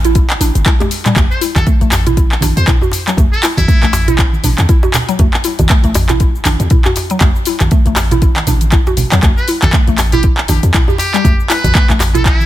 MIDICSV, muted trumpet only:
0, 0, Header, 1, 2, 480
1, 0, Start_track
1, 0, Tempo, 504202
1, 1106, Time_signature, 4, 2, 24, 8
1, 11861, End_track
2, 0, Start_track
2, 0, Title_t, "Muted trumpet"
2, 0, Program_c, 0, 59
2, 1242, Note_on_c, 0, 72, 86
2, 1336, Note_off_c, 0, 72, 0
2, 1483, Note_on_c, 0, 69, 90
2, 1577, Note_off_c, 0, 69, 0
2, 2443, Note_on_c, 0, 72, 94
2, 2537, Note_off_c, 0, 72, 0
2, 3161, Note_on_c, 0, 69, 92
2, 3256, Note_off_c, 0, 69, 0
2, 3399, Note_on_c, 0, 64, 98
2, 4067, Note_off_c, 0, 64, 0
2, 8922, Note_on_c, 0, 71, 90
2, 9016, Note_off_c, 0, 71, 0
2, 9156, Note_on_c, 0, 69, 91
2, 9253, Note_off_c, 0, 69, 0
2, 9638, Note_on_c, 0, 67, 91
2, 9734, Note_off_c, 0, 67, 0
2, 10463, Note_on_c, 0, 67, 91
2, 10843, Note_off_c, 0, 67, 0
2, 10944, Note_on_c, 0, 71, 101
2, 11324, Note_off_c, 0, 71, 0
2, 11560, Note_on_c, 0, 69, 91
2, 11644, Note_off_c, 0, 69, 0
2, 11657, Note_on_c, 0, 64, 97
2, 11861, Note_off_c, 0, 64, 0
2, 11861, End_track
0, 0, End_of_file